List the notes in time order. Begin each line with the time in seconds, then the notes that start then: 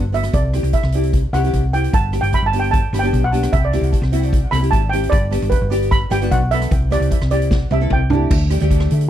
Already playing: G1
0.12 B3 D4 F#4 E5, closed hi-hat
0.23 cross-stick, closed hi-hat
0.33 C2 D5, kick, closed hi-hat
0.53 C4 E4 G4, cross-stick, closed hi-hat
0.63 C2, closed hi-hat
0.73 E5, kick, closed hi-hat
0.83 C2, cross-stick
0.92 C4 E4 G4, closed hi-hat
1.03 closed hi-hat
1.13 kick, closed hi-hat
1.33 C2 C4 E4 G4 F#5, cross-stick, closed hi-hat
1.44 C4 E4 G4, closed hi-hat
1.53 C2, kick, closed hi-hat
1.73 C4 E4 G4 G5, closed hi-hat
1.84 closed hi-hat
1.93 G1 A5, kick, closed hi-hat
2.12 B3 D4 G4, cross-stick, closed hi-hat
2.21 G1 G5, closed hi-hat
2.33 B5, kick, closed hi-hat
2.42 G1 A5
2.53 B3 D4 G4, closed hi-hat
2.59 G5
2.64 closed hi-hat
2.71 A5, kick, closed hi-hat
2.93 G1 B3 D4 G4, cross-stick, closed hi-hat
2.99 B3 D4 G5
3.03 G4, closed hi-hat
3.13 B1, kick, closed hi-hat
3.24 F#5
3.32 B3 D4 G4, closed hi-hat
3.43 cross-stick, closed hi-hat
3.53 C2 E5, kick, closed hi-hat
3.65 D5
3.72 C4 E4 G4, cross-stick, closed hi-hat
3.81 C2, closed hi-hat
3.93 kick, closed hi-hat
4.02 C2, cross-stick
4.12 C4 E4 F#4, closed hi-hat
4.23 closed hi-hat
4.33 kick, closed hi-hat
4.51 C2 C4 E4 A4 B5, cross-stick, closed hi-hat
4.60 C4 E4 G4, closed hi-hat
4.71 G#1 A5, kick, closed hi-hat
4.89 C4 E4 G4 G5, closed hi-hat
5.04 closed hi-hat
5.10 G1 D5, kick, closed hi-hat
5.30 B3 D4 G4, cross-stick, closed hi-hat
5.42 G1, closed hi-hat
5.50 B4, kick, closed hi-hat
5.62 G1
5.70 B3 D4 G4, closed hi-hat
5.82 closed hi-hat
5.91 B5, kick, closed hi-hat
6.10 G1 B3 D4 G4 G5, cross-stick, closed hi-hat
6.21 B3 D4 F#4, closed hi-hat
6.31 B1 F#5, kick, closed hi-hat
6.51 B3 D4 A4 E5, closed hi-hat
6.62 cross-stick, closed hi-hat
6.71 C2, kick, closed hi-hat
6.90 C4 E4 G4 D5, cross-stick, closed hi-hat
7.00 C2, closed hi-hat
7.11 kick, closed hi-hat
7.22 C2, cross-stick
7.31 C4 E4 G4 D5, closed hi-hat
7.42 closed hi-hat
7.51 kick, snare
7.71 C2 C4 E4 G4 E5, high tom
7.80 C4 E4 A4
7.90 C2 G5, kick, mid tom
8.10 A3 C4 D4 E4 G4, floor tom
8.31 D2, kick, crash
8.50 A3 D4 G4, cross-stick, closed hi-hat
8.60 D2 A3 D4 G4, closed hi-hat
8.71 kick, closed hi-hat
8.80 cross-stick
8.91 D3, closed hi-hat
9.01 closed hi-hat